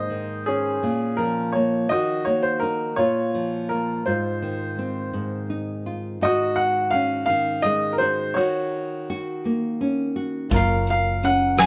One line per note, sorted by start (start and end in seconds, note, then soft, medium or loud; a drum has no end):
0.00 0.78 G#2 medium
0.00 0.80 C5 soft
0.00 0.43 D#5 medium
0.10 0.82 D#3 soft
0.46 1.51 C#4 soft
0.46 1.20 G#4 medium
0.83 1.90 A#2 soft
1.17 1.86 F3 soft
1.17 1.51 A#4 medium
1.52 1.87 A#3 soft
1.52 1.87 C#5 medium
1.89 2.98 D#3 medium
1.89 2.95 F#4 soft
1.89 2.27 D#5 medium
2.25 2.94 A#3 soft
2.25 2.44 C#5 medium
2.43 2.62 C5 medium
2.60 2.94 D#4 soft
2.60 2.98 A#4 medium
2.96 4.05 A#2 soft
2.96 4.02 F4 soft
2.96 3.71 C#5 medium
3.34 4.02 F3 soft
3.69 4.02 A#3 soft
3.69 4.06 A#4 medium
4.06 5.12 G#2 soft
4.06 5.47 F4 soft
4.06 5.46 C5 soft
4.42 7.28 D#3 soft
4.79 6.18 C4 soft
5.13 6.17 G#2 soft
5.50 6.17 D#4 soft
5.86 6.22 F4 soft
6.21 8.33 G#2 medium
6.21 8.00 F#4 medium
6.21 7.27 F#4 soft
6.21 6.59 D#5 medium
6.56 6.94 F#5 medium
6.91 8.40 C#4 soft
6.91 7.24 F5 medium
7.26 8.36 D#3 soft
7.26 7.65 F5 medium
7.62 8.37 G#3 soft
7.62 7.94 D#5 medium
7.93 8.01 A#4 soft
7.98 8.37 F#4 medium
7.98 8.37 C5 medium
8.34 10.51 D#3 medium
8.34 9.40 F#4 soft
8.34 9.09 F#4 medium
8.34 9.12 C#5 medium
9.10 10.16 F#4 medium
9.45 10.48 A#3 medium
9.81 10.48 C#4 soft
10.16 10.50 F#4 medium
10.50 11.66 F#1 medium
10.50 11.66 F#2 medium
10.50 11.66 F4 medium
10.50 kick medium
10.50 closed hi-hat medium
10.54 11.56 A#4 medium
10.54 10.89 F5 medium
10.87 11.25 F5 medium
10.87 closed hi-hat soft
11.23 11.66 C#4 soft
11.23 11.61 F#5 medium
11.23 closed hi-hat soft
11.57 11.66 F#3 medium
11.57 11.66 G#5 medium
11.57 cross-stick medium
11.57 closed hi-hat medium